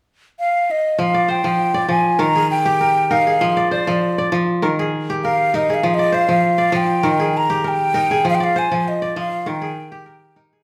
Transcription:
0.39 0.72 F5 medium
0.71 1.01 D#5 medium
0.99 1.43 F3 medium
0.99 1.32 F5 medium
1.14 1.74 D5 medium
1.28 2.47 C5 medium
1.28 1.90 G5 medium
1.44 1.87 F3 medium
1.74 2.25 D5 medium
1.89 2.25 F3 medium
1.89 2.22 G#5 medium
2.19 3.46 D#3 medium
2.19 2.80 A#4 medium
2.19 2.50 A#5 medium
2.35 3.26 G#4 medium
2.51 3.13 G5 medium
2.66 3.33 G4 medium
2.81 3.10 A#4 medium
3.11 3.63 D#4 medium
3.11 4.38 A#4 medium
3.11 3.71 F5 medium
3.27 4.63 G#4 medium
3.41 3.86 F3 medium
3.57 4.18 D5 medium
3.71 4.90 C5 medium
3.71 4.28 D5 medium
3.87 4.31 F3 medium
4.18 4.68 D5 medium
4.32 4.67 F3 medium
4.62 5.88 D#3 medium
4.62 5.24 A#4 medium
4.79 5.69 G#4 medium
5.10 5.76 G4 medium
5.24 5.54 A#4 medium
5.24 5.57 F5 medium
5.54 6.05 D#4 medium
5.54 6.81 A#4 medium
5.54 5.76 D#5 medium
5.70 7.06 G#4 medium
5.74 5.96 F5 medium
5.83 6.27 F3 medium
5.94 6.16 D#5 medium
5.99 6.58 D5 medium
6.12 7.31 C5 medium
6.12 6.78 F5 medium
6.29 6.71 F3 medium
6.58 7.09 D5 medium
6.72 7.09 F3 medium
6.76 7.39 G5 medium
7.03 8.30 D#3 medium
7.03 7.64 A#4 medium
7.19 8.11 G#4 medium
7.37 7.70 A#5 medium
7.50 8.17 G4 medium
7.64 7.94 A#4 medium
7.64 8.27 G5 medium
7.94 8.46 D#4 medium
7.94 9.21 A#4 medium
8.11 9.47 G#4 medium
8.25 8.70 F3 medium
8.30 8.36 F5 medium
8.35 8.45 G5 medium
8.40 9.02 D5 medium
8.40 8.60 F5 medium
8.56 9.75 C5 medium
8.56 8.90 G#5 medium
8.71 9.15 F3 medium
8.88 9.17 D#5 medium
9.02 9.52 D5 medium
9.16 9.51 F3 medium
9.16 9.49 F5 medium
9.46 10.63 D#3 medium
9.46 10.06 A#4 medium
9.46 10.38 G5 medium
9.62 10.52 G#4 medium
9.92 10.59 G4 medium
10.06 10.36 A#4 soft
10.36 10.63 D#4 medium
10.36 10.63 A#4 medium
10.53 10.63 G#4 medium

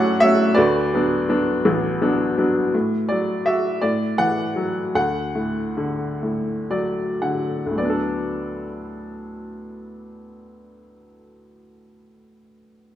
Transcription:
0.00 0.54 A2 medium
0.00 0.20 F#3 soft
0.00 0.21 A3 soft
0.00 0.21 C#4 medium
0.00 0.53 F#4 medium
0.00 0.55 D5 medium
0.00 0.21 F#5 medium
0.20 0.50 F#3 soft
0.20 0.50 A3 soft
0.20 0.50 C#4 soft
0.20 0.57 E5 medium
0.55 2.70 D2 medium
0.55 1.96 F#4 medium
0.55 1.96 B4 medium
0.55 1.95 D5 medium
0.94 1.27 F#3 soft
0.94 1.28 B3 soft
0.94 1.28 D4 soft
1.29 1.86 F#3 soft
1.29 1.87 B3 soft
1.29 1.87 D4 soft
1.65 2.71 A1 medium
2.01 2.36 F#3 soft
2.01 2.37 B3 soft
2.01 2.37 D4 soft
2.38 2.67 F#3 soft
2.38 2.67 B3 soft
2.38 2.67 D4 soft
2.74 3.80 A2 soft
3.09 3.81 F#3 soft
3.09 3.47 D5 medium
3.46 3.82 F#4 soft
3.46 3.83 E5 medium
3.82 4.91 A2 soft
3.82 4.20 D5 medium
4.18 4.92 E3 soft
4.18 4.90 F#5 medium
4.56 4.94 F#3 soft
4.95 7.64 D2 soft
4.95 6.66 F#5 medium
5.35 6.21 A2 soft
5.77 7.20 D3 soft
6.22 7.69 A2 soft
6.70 7.74 F#3 soft
6.70 7.18 D5 soft
7.22 7.76 D3 soft
7.22 7.74 F#5 soft
7.66 11.48 D2 soft
7.71 11.53 A2 soft
7.76 11.58 F#3 soft
7.76 11.60 D5 soft
7.80 11.62 B3 soft
7.85 11.67 D4 soft
7.90 11.72 A4 soft

